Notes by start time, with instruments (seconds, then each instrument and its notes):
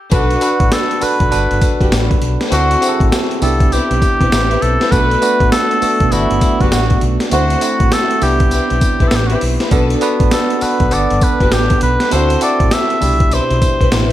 0.11 fingered electric bass B1, tine electric piano D4 F#4 A4 B4, string section D4 A4 B4, cor anglais F#4, kick, closed hi-hat, tambourine
0.31 closed hi-hat
0.41 tine electric piano D4 F#4 A4 B4, closed hi-hat, tambourine
0.60 fingered electric bass A1, kick, closed hi-hat
0.72 cor anglais A4, snare, closed hi-hat, tambourine
0.91 closed hi-hat
1.01 tine electric piano D4 F#4 A4 B4, cor anglais B4, muted fingered electric bass stroke, open hi-hat, tambourine
1.20 fingered electric bass B1, kick, closed hi-hat
1.31 fingered electric bass G1, tine electric piano D4 F#4 A4 B4, closed hi-hat, tambourine
1.51 fingered electric bass G1, closed hi-hat
1.61 kick, closed hi-hat, tambourine
1.80 fingered electric bass F#1, string section F#4 G4 B4, kick, closed hi-hat
1.92 fingered electric bass A1, snare, closed hi-hat, tambourine
2.11 kick, closed hi-hat
2.22 fingered electric bass B1, closed hi-hat
2.41 snare, closed hi-hat
2.51 fingered electric bass D2, tine electric piano C4 E4 F#4 A4, string section D4 F#4 C5, cor anglais F#4, closed hi-hat, tambourine
2.71 closed hi-hat
2.81 tine electric piano C4 E4 F#4 G#4, closed hi-hat, tambourine
2.89 tine electric piano A4
3.00 fingered electric bass A1, kick, closed hi-hat
3.12 snare, closed hi-hat, tambourine
3.31 closed hi-hat
3.41 fingered electric bass C2, tine electric piano B3 D4 E4 G4, cor anglais A4, open hi-hat, tambourine
3.60 kick, closed hi-hat
3.72 string section C4 E4 B4, cor anglais G4, closed hi-hat, tambourine
3.91 fingered electric bass B1, closed hi-hat
4.02 kick, closed hi-hat, tambourine
4.20 fingered electric bass B1, string section C4 E4 B4, kick, closed hi-hat
4.32 fingered electric bass A1, snare, closed hi-hat, tambourine
4.50 string section C4 E4 B4, closed hi-hat
4.62 fingered electric bass B1, cor anglais A4, closed hi-hat
4.80 string section C4 E4 B4, snare, closed hi-hat
4.91 fingered electric bass B1, tine electric piano A3 B3 D4 F#4, string section D4 A4 B4, cor anglais B4, kick, closed hi-hat, tambourine
5.11 closed hi-hat
5.21 tine electric piano A3 B3 D4 F#4, closed hi-hat, tambourine
5.40 fingered electric bass A1, kick, closed hi-hat
5.52 cor anglais A4, snare, closed hi-hat, tambourine
5.71 closed hi-hat
5.82 tine electric piano A3 B3 D4 F#4, muted fingered electric bass stroke, open hi-hat, tambourine
6.00 fingered electric bass B1, kick, closed hi-hat
6.12 fingered electric bass G1, tine electric piano A3 B3 D4 F#4, cor anglais E4, closed hi-hat, tambourine
6.31 fingered electric bass G1, closed hi-hat
6.41 kick, closed hi-hat, tambourine
6.61 fingered electric bass F#1, string section F#4 G4 B4, cor anglais F#4, kick, closed hi-hat
6.72 fingered electric bass A1, snare, closed hi-hat, tambourine
6.90 kick, closed hi-hat
7.01 fingered electric bass B1, closed hi-hat
7.20 snare, closed hi-hat
7.31 fingered electric bass D2, tine electric piano A3 C4 E4 F#4, string section D4 F#4 C5, cor anglais F#4, closed hi-hat, tambourine
7.50 closed hi-hat
7.61 tine electric piano A3 C4 E4 F#4, closed hi-hat, tambourine
7.80 fingered electric bass A1, kick, closed hi-hat
7.92 cor anglais A4, snare, closed hi-hat, tambourine
8.11 closed hi-hat
8.22 fingered electric bass C2, tine electric piano B3 D4 E4 G4, cor anglais G4, open hi-hat, tambourine
8.40 kick, closed hi-hat
8.51 string section C4 E4 B4, closed hi-hat, tambourine
8.70 fingered electric bass B1, closed hi-hat
8.81 kick, closed hi-hat, tambourine
9.00 fingered electric bass B1, string section C4 E4 B4, kick, closed hi-hat
9.08 cor anglais A4, snare, closed hi-hat, tambourine
9.12 fingered electric bass A1
9.16 cor anglais G4
9.27 string section C4 E4 B4, cor anglais F#4, closed hi-hat
9.36 cor anglais G4
9.41 fingered electric bass B1, open hi-hat
9.60 string section C4 E4 B4, snare, closed hi-hat
9.71 fingered electric bass B1, tine electric piano B3 D4 F#4 A4, string section D4 A4 B4, kick, closed hi-hat, tambourine
9.90 closed hi-hat
10.01 tine electric piano B3 D4 F#4 B4, closed hi-hat, tambourine
10.20 fingered electric bass A1, kick, closed hi-hat
10.31 cor anglais A4, snare, closed hi-hat, tambourine
10.50 closed hi-hat
10.61 tine electric piano B3 D4 F#4 A4, cor anglais B4, muted fingered electric bass stroke, open hi-hat, tambourine
10.80 fingered electric bass B1, kick, closed hi-hat
10.91 fingered electric bass G1, tine electric piano B3 D4 A4 F#5, cor anglais D5, closed hi-hat, tambourine
11.10 fingered electric bass G1, closed hi-hat
11.21 cor anglais B4, kick, closed hi-hat, tambourine
11.40 fingered electric bass F#1, string section F#4 G4 B4, kick, closed hi-hat
11.52 fingered electric bass A1, cor anglais G4, snare, closed hi-hat, tambourine
11.70 kick, closed hi-hat
11.81 fingered electric bass B1, cor anglais B4, closed hi-hat
12.00 snare, closed hi-hat
12.11 fingered electric bass D2, tine electric piano C4 E4 F#4 A4, string section D4 F#4 C5, cor anglais C5, closed hi-hat, tambourine
12.30 closed hi-hat
12.41 tine electric piano C4 E4 F#4 A4, cor anglais D5, closed hi-hat, tambourine
12.60 fingered electric bass A1, kick, closed hi-hat
12.71 cor anglais E5, snare, closed hi-hat, tambourine
12.90 closed hi-hat
13.01 fingered electric bass C2, tine electric piano B2 D4 E4 G4, open hi-hat, tambourine
13.20 kick, closed hi-hat
13.31 string section C4 E4 B4, cor anglais C5, closed hi-hat, tambourine
13.51 fingered electric bass B1, closed hi-hat
13.62 kick, closed hi-hat, tambourine
13.80 fingered electric bass B1, string section C4 E4 B4, kick, closed hi-hat
13.92 fingered electric bass A1, string section C4 E4 B4, snare, closed hi-hat, tambourine